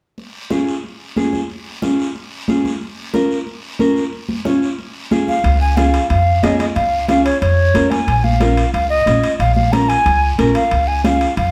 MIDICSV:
0, 0, Header, 1, 5, 480
1, 0, Start_track
1, 0, Tempo, 329308
1, 258, Time_signature, 4, 2, 24, 8
1, 16780, End_track
2, 0, Start_track
2, 0, Title_t, "Flute"
2, 0, Program_c, 0, 73
2, 7699, Note_on_c, 0, 77, 91
2, 8144, Note_off_c, 0, 77, 0
2, 8174, Note_on_c, 0, 80, 80
2, 8401, Note_on_c, 0, 77, 79
2, 8423, Note_off_c, 0, 80, 0
2, 8889, Note_off_c, 0, 77, 0
2, 8896, Note_on_c, 0, 77, 85
2, 9373, Note_on_c, 0, 75, 75
2, 9395, Note_off_c, 0, 77, 0
2, 9600, Note_off_c, 0, 75, 0
2, 9609, Note_on_c, 0, 75, 82
2, 9696, Note_off_c, 0, 75, 0
2, 9845, Note_on_c, 0, 77, 87
2, 10297, Note_off_c, 0, 77, 0
2, 10330, Note_on_c, 0, 77, 85
2, 10557, Note_off_c, 0, 77, 0
2, 10565, Note_on_c, 0, 73, 79
2, 10794, Note_off_c, 0, 73, 0
2, 10804, Note_on_c, 0, 73, 83
2, 11522, Note_on_c, 0, 80, 91
2, 11544, Note_off_c, 0, 73, 0
2, 12011, Note_on_c, 0, 77, 86
2, 12033, Note_off_c, 0, 80, 0
2, 12726, Note_off_c, 0, 77, 0
2, 12734, Note_on_c, 0, 77, 94
2, 12960, Note_off_c, 0, 77, 0
2, 12969, Note_on_c, 0, 75, 92
2, 13644, Note_off_c, 0, 75, 0
2, 13693, Note_on_c, 0, 77, 94
2, 13914, Note_off_c, 0, 77, 0
2, 13923, Note_on_c, 0, 77, 86
2, 14171, Note_on_c, 0, 82, 98
2, 14193, Note_off_c, 0, 77, 0
2, 14412, Note_on_c, 0, 80, 101
2, 14434, Note_off_c, 0, 82, 0
2, 14981, Note_off_c, 0, 80, 0
2, 15373, Note_on_c, 0, 77, 90
2, 15854, Note_on_c, 0, 80, 87
2, 15876, Note_off_c, 0, 77, 0
2, 16086, Note_off_c, 0, 80, 0
2, 16095, Note_on_c, 0, 77, 89
2, 16544, Note_off_c, 0, 77, 0
2, 16580, Note_on_c, 0, 77, 95
2, 16780, Note_off_c, 0, 77, 0
2, 16780, End_track
3, 0, Start_track
3, 0, Title_t, "Nylon-string guitar"
3, 0, Program_c, 1, 24
3, 731, Note_on_c, 1, 61, 68
3, 733, Note_on_c, 1, 65, 63
3, 746, Note_on_c, 1, 68, 74
3, 1070, Note_off_c, 1, 61, 0
3, 1073, Note_off_c, 1, 65, 0
3, 1075, Note_off_c, 1, 68, 0
3, 1691, Note_on_c, 1, 61, 66
3, 1700, Note_on_c, 1, 65, 62
3, 1709, Note_on_c, 1, 68, 74
3, 2030, Note_off_c, 1, 61, 0
3, 2035, Note_off_c, 1, 65, 0
3, 2037, Note_off_c, 1, 68, 0
3, 2653, Note_on_c, 1, 61, 71
3, 2658, Note_on_c, 1, 65, 62
3, 2668, Note_on_c, 1, 68, 75
3, 2991, Note_off_c, 1, 61, 0
3, 2994, Note_off_c, 1, 65, 0
3, 2996, Note_off_c, 1, 68, 0
3, 3616, Note_on_c, 1, 61, 69
3, 3622, Note_on_c, 1, 65, 62
3, 3629, Note_on_c, 1, 68, 77
3, 3952, Note_off_c, 1, 61, 0
3, 3955, Note_off_c, 1, 65, 0
3, 3959, Note_off_c, 1, 68, 0
3, 4567, Note_on_c, 1, 61, 73
3, 4574, Note_on_c, 1, 65, 66
3, 4580, Note_on_c, 1, 70, 84
3, 4908, Note_off_c, 1, 61, 0
3, 4911, Note_off_c, 1, 65, 0
3, 4915, Note_off_c, 1, 70, 0
3, 5530, Note_on_c, 1, 61, 68
3, 5536, Note_on_c, 1, 65, 63
3, 5540, Note_on_c, 1, 70, 74
3, 5869, Note_off_c, 1, 61, 0
3, 5871, Note_off_c, 1, 65, 0
3, 5875, Note_off_c, 1, 70, 0
3, 6485, Note_on_c, 1, 61, 75
3, 6495, Note_on_c, 1, 65, 71
3, 6499, Note_on_c, 1, 73, 83
3, 6827, Note_off_c, 1, 61, 0
3, 6830, Note_off_c, 1, 65, 0
3, 6834, Note_off_c, 1, 73, 0
3, 7446, Note_on_c, 1, 61, 73
3, 7453, Note_on_c, 1, 65, 65
3, 7459, Note_on_c, 1, 68, 80
3, 7788, Note_off_c, 1, 61, 0
3, 7790, Note_off_c, 1, 65, 0
3, 7794, Note_off_c, 1, 68, 0
3, 8415, Note_on_c, 1, 61, 67
3, 8422, Note_on_c, 1, 65, 59
3, 8428, Note_on_c, 1, 68, 73
3, 8752, Note_off_c, 1, 61, 0
3, 8755, Note_off_c, 1, 65, 0
3, 8759, Note_off_c, 1, 68, 0
3, 9377, Note_on_c, 1, 61, 59
3, 9383, Note_on_c, 1, 65, 59
3, 9389, Note_on_c, 1, 68, 67
3, 9713, Note_off_c, 1, 61, 0
3, 9717, Note_off_c, 1, 65, 0
3, 9718, Note_off_c, 1, 68, 0
3, 10327, Note_on_c, 1, 61, 70
3, 10335, Note_on_c, 1, 65, 58
3, 10343, Note_on_c, 1, 68, 71
3, 10668, Note_off_c, 1, 61, 0
3, 10672, Note_off_c, 1, 65, 0
3, 10675, Note_off_c, 1, 68, 0
3, 11290, Note_on_c, 1, 61, 61
3, 11301, Note_on_c, 1, 65, 57
3, 11303, Note_on_c, 1, 70, 70
3, 11631, Note_off_c, 1, 61, 0
3, 11634, Note_off_c, 1, 65, 0
3, 11636, Note_off_c, 1, 70, 0
3, 12257, Note_on_c, 1, 61, 66
3, 12265, Note_on_c, 1, 65, 61
3, 12267, Note_on_c, 1, 70, 73
3, 12594, Note_off_c, 1, 61, 0
3, 12597, Note_off_c, 1, 65, 0
3, 12599, Note_off_c, 1, 70, 0
3, 13210, Note_on_c, 1, 61, 64
3, 13218, Note_on_c, 1, 65, 56
3, 13224, Note_on_c, 1, 73, 69
3, 13551, Note_off_c, 1, 61, 0
3, 13553, Note_off_c, 1, 65, 0
3, 13557, Note_off_c, 1, 73, 0
3, 14169, Note_on_c, 1, 61, 65
3, 14179, Note_on_c, 1, 70, 72
3, 14180, Note_on_c, 1, 65, 59
3, 14511, Note_off_c, 1, 61, 0
3, 14513, Note_off_c, 1, 65, 0
3, 14515, Note_off_c, 1, 70, 0
3, 15133, Note_on_c, 1, 61, 76
3, 15139, Note_on_c, 1, 65, 66
3, 15146, Note_on_c, 1, 70, 78
3, 15472, Note_off_c, 1, 61, 0
3, 15475, Note_off_c, 1, 65, 0
3, 15479, Note_off_c, 1, 70, 0
3, 16090, Note_on_c, 1, 61, 64
3, 16097, Note_on_c, 1, 65, 60
3, 16104, Note_on_c, 1, 68, 71
3, 16431, Note_off_c, 1, 61, 0
3, 16434, Note_off_c, 1, 65, 0
3, 16438, Note_off_c, 1, 68, 0
3, 16780, End_track
4, 0, Start_track
4, 0, Title_t, "Upright bass"
4, 0, Program_c, 2, 32
4, 7927, Note_on_c, 2, 37, 91
4, 8699, Note_off_c, 2, 37, 0
4, 8896, Note_on_c, 2, 41, 97
4, 9281, Note_off_c, 2, 41, 0
4, 9373, Note_on_c, 2, 37, 78
4, 9567, Note_off_c, 2, 37, 0
4, 9856, Note_on_c, 2, 37, 85
4, 10625, Note_off_c, 2, 37, 0
4, 10813, Note_on_c, 2, 41, 93
4, 11199, Note_off_c, 2, 41, 0
4, 11295, Note_on_c, 2, 37, 79
4, 11488, Note_off_c, 2, 37, 0
4, 11769, Note_on_c, 2, 34, 86
4, 12541, Note_off_c, 2, 34, 0
4, 12734, Note_on_c, 2, 37, 97
4, 13120, Note_off_c, 2, 37, 0
4, 13209, Note_on_c, 2, 34, 75
4, 13405, Note_off_c, 2, 34, 0
4, 13694, Note_on_c, 2, 34, 86
4, 14464, Note_off_c, 2, 34, 0
4, 14660, Note_on_c, 2, 37, 97
4, 15044, Note_off_c, 2, 37, 0
4, 15141, Note_on_c, 2, 34, 78
4, 15333, Note_off_c, 2, 34, 0
4, 15620, Note_on_c, 2, 37, 90
4, 16388, Note_off_c, 2, 37, 0
4, 16576, Note_on_c, 2, 41, 93
4, 16780, Note_off_c, 2, 41, 0
4, 16780, End_track
5, 0, Start_track
5, 0, Title_t, "Drums"
5, 259, Note_on_c, 9, 63, 31
5, 260, Note_on_c, 9, 74, 63
5, 405, Note_off_c, 9, 63, 0
5, 406, Note_off_c, 9, 74, 0
5, 734, Note_on_c, 9, 73, 61
5, 736, Note_on_c, 9, 63, 86
5, 880, Note_off_c, 9, 73, 0
5, 882, Note_off_c, 9, 63, 0
5, 981, Note_on_c, 9, 73, 62
5, 1126, Note_off_c, 9, 73, 0
5, 1220, Note_on_c, 9, 63, 30
5, 1220, Note_on_c, 9, 74, 56
5, 1365, Note_off_c, 9, 74, 0
5, 1366, Note_off_c, 9, 63, 0
5, 1696, Note_on_c, 9, 63, 80
5, 1703, Note_on_c, 9, 73, 58
5, 1842, Note_off_c, 9, 63, 0
5, 1849, Note_off_c, 9, 73, 0
5, 1938, Note_on_c, 9, 73, 58
5, 1939, Note_on_c, 9, 63, 58
5, 2084, Note_off_c, 9, 73, 0
5, 2085, Note_off_c, 9, 63, 0
5, 2179, Note_on_c, 9, 63, 34
5, 2183, Note_on_c, 9, 74, 63
5, 2325, Note_off_c, 9, 63, 0
5, 2329, Note_off_c, 9, 74, 0
5, 2657, Note_on_c, 9, 63, 85
5, 2661, Note_on_c, 9, 73, 67
5, 2803, Note_off_c, 9, 63, 0
5, 2807, Note_off_c, 9, 73, 0
5, 2904, Note_on_c, 9, 73, 63
5, 3049, Note_off_c, 9, 73, 0
5, 3135, Note_on_c, 9, 63, 30
5, 3146, Note_on_c, 9, 74, 61
5, 3281, Note_off_c, 9, 63, 0
5, 3292, Note_off_c, 9, 74, 0
5, 3614, Note_on_c, 9, 63, 77
5, 3622, Note_on_c, 9, 73, 61
5, 3760, Note_off_c, 9, 63, 0
5, 3768, Note_off_c, 9, 73, 0
5, 3854, Note_on_c, 9, 63, 64
5, 3863, Note_on_c, 9, 73, 63
5, 4000, Note_off_c, 9, 63, 0
5, 4009, Note_off_c, 9, 73, 0
5, 4092, Note_on_c, 9, 63, 33
5, 4099, Note_on_c, 9, 74, 64
5, 4237, Note_off_c, 9, 63, 0
5, 4245, Note_off_c, 9, 74, 0
5, 4573, Note_on_c, 9, 63, 85
5, 4578, Note_on_c, 9, 73, 63
5, 4719, Note_off_c, 9, 63, 0
5, 4724, Note_off_c, 9, 73, 0
5, 4821, Note_on_c, 9, 73, 60
5, 4966, Note_off_c, 9, 73, 0
5, 5051, Note_on_c, 9, 63, 33
5, 5058, Note_on_c, 9, 74, 60
5, 5197, Note_off_c, 9, 63, 0
5, 5203, Note_off_c, 9, 74, 0
5, 5529, Note_on_c, 9, 63, 76
5, 5537, Note_on_c, 9, 73, 63
5, 5675, Note_off_c, 9, 63, 0
5, 5683, Note_off_c, 9, 73, 0
5, 5775, Note_on_c, 9, 73, 58
5, 5920, Note_off_c, 9, 73, 0
5, 6011, Note_on_c, 9, 63, 32
5, 6016, Note_on_c, 9, 74, 64
5, 6157, Note_off_c, 9, 63, 0
5, 6161, Note_off_c, 9, 74, 0
5, 6247, Note_on_c, 9, 63, 66
5, 6393, Note_off_c, 9, 63, 0
5, 6490, Note_on_c, 9, 63, 88
5, 6497, Note_on_c, 9, 73, 65
5, 6636, Note_off_c, 9, 63, 0
5, 6643, Note_off_c, 9, 73, 0
5, 6738, Note_on_c, 9, 73, 63
5, 6884, Note_off_c, 9, 73, 0
5, 6974, Note_on_c, 9, 63, 33
5, 6976, Note_on_c, 9, 74, 58
5, 7120, Note_off_c, 9, 63, 0
5, 7122, Note_off_c, 9, 74, 0
5, 7453, Note_on_c, 9, 63, 79
5, 7459, Note_on_c, 9, 73, 66
5, 7599, Note_off_c, 9, 63, 0
5, 7605, Note_off_c, 9, 73, 0
5, 7692, Note_on_c, 9, 63, 65
5, 7701, Note_on_c, 9, 73, 63
5, 7838, Note_off_c, 9, 63, 0
5, 7846, Note_off_c, 9, 73, 0
5, 7928, Note_on_c, 9, 63, 34
5, 7934, Note_on_c, 9, 65, 62
5, 7942, Note_on_c, 9, 74, 66
5, 8074, Note_off_c, 9, 63, 0
5, 8080, Note_off_c, 9, 65, 0
5, 8088, Note_off_c, 9, 74, 0
5, 8412, Note_on_c, 9, 63, 85
5, 8417, Note_on_c, 9, 65, 60
5, 8417, Note_on_c, 9, 73, 65
5, 8557, Note_off_c, 9, 63, 0
5, 8562, Note_off_c, 9, 73, 0
5, 8563, Note_off_c, 9, 65, 0
5, 8655, Note_on_c, 9, 73, 66
5, 8656, Note_on_c, 9, 65, 60
5, 8801, Note_off_c, 9, 65, 0
5, 8801, Note_off_c, 9, 73, 0
5, 8893, Note_on_c, 9, 65, 64
5, 8896, Note_on_c, 9, 74, 60
5, 8898, Note_on_c, 9, 63, 33
5, 9039, Note_off_c, 9, 65, 0
5, 9042, Note_off_c, 9, 74, 0
5, 9043, Note_off_c, 9, 63, 0
5, 9371, Note_on_c, 9, 63, 81
5, 9372, Note_on_c, 9, 73, 66
5, 9381, Note_on_c, 9, 65, 64
5, 9381, Note_on_c, 9, 66, 69
5, 9517, Note_off_c, 9, 63, 0
5, 9518, Note_off_c, 9, 73, 0
5, 9527, Note_off_c, 9, 65, 0
5, 9527, Note_off_c, 9, 66, 0
5, 9609, Note_on_c, 9, 73, 63
5, 9613, Note_on_c, 9, 63, 63
5, 9620, Note_on_c, 9, 65, 63
5, 9754, Note_off_c, 9, 73, 0
5, 9759, Note_off_c, 9, 63, 0
5, 9766, Note_off_c, 9, 65, 0
5, 9849, Note_on_c, 9, 74, 67
5, 9851, Note_on_c, 9, 63, 34
5, 9856, Note_on_c, 9, 65, 62
5, 9994, Note_off_c, 9, 74, 0
5, 9997, Note_off_c, 9, 63, 0
5, 10002, Note_off_c, 9, 65, 0
5, 10327, Note_on_c, 9, 63, 88
5, 10334, Note_on_c, 9, 65, 59
5, 10334, Note_on_c, 9, 73, 67
5, 10473, Note_off_c, 9, 63, 0
5, 10480, Note_off_c, 9, 65, 0
5, 10480, Note_off_c, 9, 73, 0
5, 10577, Note_on_c, 9, 65, 64
5, 10580, Note_on_c, 9, 73, 65
5, 10723, Note_off_c, 9, 65, 0
5, 10726, Note_off_c, 9, 73, 0
5, 10808, Note_on_c, 9, 63, 31
5, 10812, Note_on_c, 9, 74, 62
5, 10816, Note_on_c, 9, 65, 65
5, 10954, Note_off_c, 9, 63, 0
5, 10957, Note_off_c, 9, 74, 0
5, 10962, Note_off_c, 9, 65, 0
5, 11288, Note_on_c, 9, 63, 80
5, 11295, Note_on_c, 9, 65, 65
5, 11295, Note_on_c, 9, 73, 68
5, 11434, Note_off_c, 9, 63, 0
5, 11441, Note_off_c, 9, 65, 0
5, 11441, Note_off_c, 9, 73, 0
5, 11532, Note_on_c, 9, 63, 65
5, 11537, Note_on_c, 9, 65, 64
5, 11538, Note_on_c, 9, 73, 62
5, 11678, Note_off_c, 9, 63, 0
5, 11683, Note_off_c, 9, 65, 0
5, 11684, Note_off_c, 9, 73, 0
5, 11774, Note_on_c, 9, 63, 35
5, 11775, Note_on_c, 9, 74, 68
5, 11777, Note_on_c, 9, 65, 61
5, 11920, Note_off_c, 9, 63, 0
5, 11920, Note_off_c, 9, 74, 0
5, 11922, Note_off_c, 9, 65, 0
5, 12010, Note_on_c, 9, 63, 70
5, 12156, Note_off_c, 9, 63, 0
5, 12251, Note_on_c, 9, 63, 88
5, 12254, Note_on_c, 9, 65, 64
5, 12258, Note_on_c, 9, 73, 67
5, 12396, Note_off_c, 9, 63, 0
5, 12400, Note_off_c, 9, 65, 0
5, 12404, Note_off_c, 9, 73, 0
5, 12496, Note_on_c, 9, 73, 65
5, 12498, Note_on_c, 9, 65, 63
5, 12641, Note_off_c, 9, 73, 0
5, 12644, Note_off_c, 9, 65, 0
5, 12737, Note_on_c, 9, 63, 32
5, 12737, Note_on_c, 9, 74, 66
5, 12742, Note_on_c, 9, 65, 63
5, 12882, Note_off_c, 9, 63, 0
5, 12883, Note_off_c, 9, 74, 0
5, 12888, Note_off_c, 9, 65, 0
5, 13215, Note_on_c, 9, 63, 83
5, 13220, Note_on_c, 9, 73, 65
5, 13224, Note_on_c, 9, 65, 63
5, 13361, Note_off_c, 9, 63, 0
5, 13366, Note_off_c, 9, 73, 0
5, 13369, Note_off_c, 9, 65, 0
5, 13458, Note_on_c, 9, 73, 67
5, 13462, Note_on_c, 9, 65, 61
5, 13604, Note_off_c, 9, 73, 0
5, 13607, Note_off_c, 9, 65, 0
5, 13701, Note_on_c, 9, 63, 34
5, 13701, Note_on_c, 9, 65, 66
5, 13701, Note_on_c, 9, 74, 67
5, 13847, Note_off_c, 9, 63, 0
5, 13847, Note_off_c, 9, 65, 0
5, 13847, Note_off_c, 9, 74, 0
5, 13942, Note_on_c, 9, 63, 65
5, 14088, Note_off_c, 9, 63, 0
5, 14181, Note_on_c, 9, 63, 87
5, 14184, Note_on_c, 9, 65, 62
5, 14186, Note_on_c, 9, 73, 62
5, 14326, Note_off_c, 9, 63, 0
5, 14330, Note_off_c, 9, 65, 0
5, 14332, Note_off_c, 9, 73, 0
5, 14423, Note_on_c, 9, 73, 65
5, 14426, Note_on_c, 9, 65, 60
5, 14568, Note_off_c, 9, 73, 0
5, 14572, Note_off_c, 9, 65, 0
5, 14660, Note_on_c, 9, 74, 64
5, 14663, Note_on_c, 9, 65, 68
5, 14665, Note_on_c, 9, 63, 32
5, 14806, Note_off_c, 9, 74, 0
5, 14809, Note_off_c, 9, 65, 0
5, 14810, Note_off_c, 9, 63, 0
5, 15141, Note_on_c, 9, 63, 82
5, 15142, Note_on_c, 9, 65, 67
5, 15144, Note_on_c, 9, 73, 63
5, 15287, Note_off_c, 9, 63, 0
5, 15288, Note_off_c, 9, 65, 0
5, 15290, Note_off_c, 9, 73, 0
5, 15378, Note_on_c, 9, 65, 60
5, 15379, Note_on_c, 9, 73, 61
5, 15524, Note_off_c, 9, 65, 0
5, 15525, Note_off_c, 9, 73, 0
5, 15616, Note_on_c, 9, 65, 66
5, 15623, Note_on_c, 9, 63, 35
5, 15624, Note_on_c, 9, 74, 64
5, 15762, Note_off_c, 9, 65, 0
5, 15769, Note_off_c, 9, 63, 0
5, 15770, Note_off_c, 9, 74, 0
5, 16098, Note_on_c, 9, 63, 87
5, 16103, Note_on_c, 9, 65, 58
5, 16103, Note_on_c, 9, 73, 68
5, 16244, Note_off_c, 9, 63, 0
5, 16249, Note_off_c, 9, 65, 0
5, 16249, Note_off_c, 9, 73, 0
5, 16340, Note_on_c, 9, 65, 64
5, 16340, Note_on_c, 9, 73, 64
5, 16486, Note_off_c, 9, 65, 0
5, 16486, Note_off_c, 9, 73, 0
5, 16577, Note_on_c, 9, 65, 66
5, 16578, Note_on_c, 9, 63, 32
5, 16582, Note_on_c, 9, 74, 62
5, 16723, Note_off_c, 9, 65, 0
5, 16724, Note_off_c, 9, 63, 0
5, 16728, Note_off_c, 9, 74, 0
5, 16780, End_track
0, 0, End_of_file